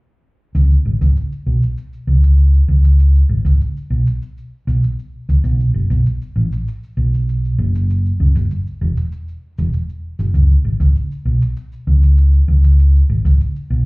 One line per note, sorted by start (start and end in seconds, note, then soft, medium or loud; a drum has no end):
0.55 0.75 C#2 medium
0.55 cabasa soft
0.71 cabasa soft
0.85 0.95 G#1 medium
1.01 1.11 C#2 medium
1.01 cabasa medium
1.17 cabasa soft
1.32 cabasa soft
1.46 1.56 B1 medium
1.63 cabasa medium
1.77 cabasa soft
1.93 cabasa soft
2.07 2.60 C#2 medium
2.23 cabasa medium
2.38 cabasa soft
2.54 cabasa soft
2.68 3.21 C#2 medium
2.84 cabasa medium
2.99 cabasa soft
3.15 cabasa soft
3.29 3.40 G#1 medium
3.45 3.55 C#2 medium
3.45 cabasa medium
3.61 cabasa soft
3.77 cabasa soft
3.90 4.01 B1 medium
4.07 cabasa medium
4.22 cabasa soft
4.38 cabasa soft
4.67 4.77 B1 medium
4.67 cabasa medium
4.84 cabasa soft
4.99 cabasa soft
5.29 5.39 C#2 medium
5.29 cabasa medium
5.44 5.64 B1 medium
5.44 cabasa soft
5.60 cabasa soft
5.74 5.85 F#1 medium
5.90 6.00 B1 medium
5.90 cabasa medium
6.06 cabasa medium
6.22 cabasa soft
6.36 6.46 A1 medium
6.53 cabasa medium
6.68 cabasa soft
6.83 cabasa soft
6.97 7.50 B1 medium
7.14 cabasa medium
7.29 cabasa soft
7.45 cabasa soft
7.58 8.11 F#1 medium
7.75 cabasa medium
7.90 cabasa soft
8.06 cabasa soft
8.20 8.30 C#2 medium
8.35 8.45 F#1 medium
8.35 cabasa medium
8.51 cabasa medium
8.67 cabasa soft
8.81 8.91 E1 medium
8.97 cabasa medium
9.12 cabasa soft
9.28 cabasa soft
9.58 9.68 E1 medium
9.58 cabasa medium
9.73 cabasa medium
9.89 cabasa soft
10.19 10.29 F#1 medium
10.19 cabasa medium
10.34 10.54 C#2 medium
10.34 cabasa soft
10.50 cabasa soft
10.64 10.75 G#1 medium
10.80 10.90 C#2 medium
10.80 cabasa medium
10.95 cabasa soft
11.11 cabasa soft
11.25 11.36 B1 medium
11.42 cabasa medium
11.57 cabasa soft
11.72 cabasa soft
11.87 12.40 C#2 medium
12.03 cabasa medium
12.18 cabasa soft
12.33 cabasa soft
12.48 13.01 C#2 medium
12.64 cabasa medium
12.79 cabasa soft
12.95 cabasa soft
13.09 13.20 G#1 medium
13.25 13.35 C#2 loud
13.25 cabasa medium
13.40 cabasa soft
13.56 cabasa soft
13.70 13.81 B1 medium